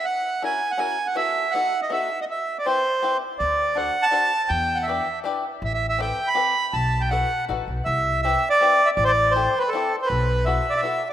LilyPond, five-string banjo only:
\new Staff \with { instrumentName = "Five-string banjo" } { \time 3/4 \key b \phrygian \tempo 4 = 161 r4 <cis' e' fis' ais'>8 r8 <cis' e' fis' ais'>8 r8 | <b e' fis' a'>4 <b dis' fis' a'>8 r8 <b dis' fis' a'>8 r8 | r4 <c' e' g' b'>8 r8 <c' e' g' b'>8 r8 | r4 <d' fis' a' c''>8 r8 <d' fis' a' c''>8 r8 |
r4 <d' e' g' b'>8 r8 <d' e' g' b'>8 r8 | r4 <c' g' a' b'>8 r8 <c' g' a' b'>8 r8 | r4 <e' fis' a' b'>8 r8 <dis' fis' a' b'>8 r8 | r4 <c' e' g' b'>8 r8 <c' e' g' b'>8 r8 |
r4 <c' e' g' a'>8 r8 <c' e' g' a'>8 r8 | r4 <b e' fis' a'>8 r8 <b e' fis' a'>8 r8 | }